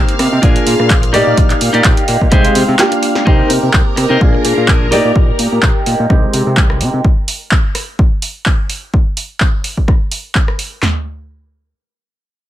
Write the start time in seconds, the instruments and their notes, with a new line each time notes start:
Already playing: grand piano A#3 C4 D#4 G4, clean electric guitar D#4 A#4 C5, string machine F5 F6
0.09 closed hi-hat
0.19 analog synth bass C3, cross-stick, open hi-hat
0.33 analog synth bass C3
0.42 analog synth bass A#1, grand piano A#3 D4 F4 G#4, clean electric guitar D4 G#4 A#4, kick, closed hi-hat
0.56 closed hi-hat
0.67 analog synth bass A#2, open hi-hat
0.80 analog synth bass A#2, cross-stick
0.90 analog synth bass A#1, kick, clap, closed hi-hat
1.02 muted clean electric guitar stroke, closed hi-hat
1.13 analog synth bass A#2, grand piano A#3 D#4 G4 D5, clean electric guitar D#4 G4 D5, open hi-hat
1.27 analog synth bass A#2
1.37 analog synth bass A#1, kick, closed hi-hat
1.50 clap, closed hi-hat
1.61 analog synth bass A#2, open hi-hat
1.73 analog synth bass A#2, clean electric guitar D#4 G4 D5, closed hi-hat
1.84 analog synth bass A#1, kick, clap, closed hi-hat
1.97 closed hi-hat
2.08 analog synth bass A#2, open hi-hat
2.21 analog synth bass A#2, kick
2.31 analog synth bass C2, grand piano G#3 C4 D#4 G5, clean electric guitar G4 G#4 C5, kick, cross-stick, closed hi-hat
2.45 closed hi-hat
2.55 analog synth bass C3, open hi-hat
2.68 analog synth bass C3
2.79 grand piano A#3 D4 F4 G4, snare, clap, closed hi-hat
2.91 muted clean electric guitar stroke, closed hi-hat
3.02 muted clean electric guitar stroke, open hi-hat
3.15 snare
3.26 analog synth bass C2, grand piano A#3 C4 D#4 G4, clean electric guitar D#4 A#4 C5, string machine A#4 A#5, kick
3.50 analog synth bass C3, open hi-hat
3.63 analog synth bass C3
3.73 analog synth bass C2, kick, clap
3.96 analog synth bass C3, muted clean electric guitar stroke, cross-stick, open hi-hat
4.09 analog synth bass C3, clean electric guitar D#4 A#4 C5
4.20 analog synth bass A#1, grand piano A#3 D4 F4 G#4, kick
4.33 muted clean electric guitar stroke
4.44 analog synth bass A#2, muted clean electric guitar stroke, open hi-hat
4.56 analog synth bass A#2, muted clean electric guitar stroke
4.67 analog synth bass A#1, clean electric guitar D4 G#4 A#4, kick, clap
4.91 analog synth bass A#2, grand piano A#3 D#4 G4 D5, clean electric guitar D#4 G4 D5, open hi-hat
5.05 analog synth bass A#2
5.16 analog synth bass A#1, kick
5.39 analog synth bass A#2, open hi-hat
5.52 analog synth bass A#2
5.63 analog synth bass A#1, kick, clap
5.86 analog synth bass A#2, open hi-hat
6.00 analog synth bass A#2
6.09 analog synth bass C2, grand piano G#3 C4 D#4 G4, kick, cross-stick
6.34 analog synth bass C3, open hi-hat
6.47 analog synth bass C3
6.57 analog synth bass C2, kick, clap
6.70 cross-stick
6.81 analog synth bass C3, open hi-hat
6.94 analog synth bass C3
7.05 kick
7.28 open hi-hat
7.51 kick, clap
7.75 cross-stick, open hi-hat
7.99 kick
8.22 open hi-hat
8.46 kick, clap
8.70 open hi-hat
8.94 kick
9.17 open hi-hat
9.40 kick, clap
9.64 open hi-hat
9.77 kick
9.88 kick, cross-stick
10.12 open hi-hat
10.35 kick, clap
10.48 cross-stick
10.59 open hi-hat
10.83 snare, clap, floor tom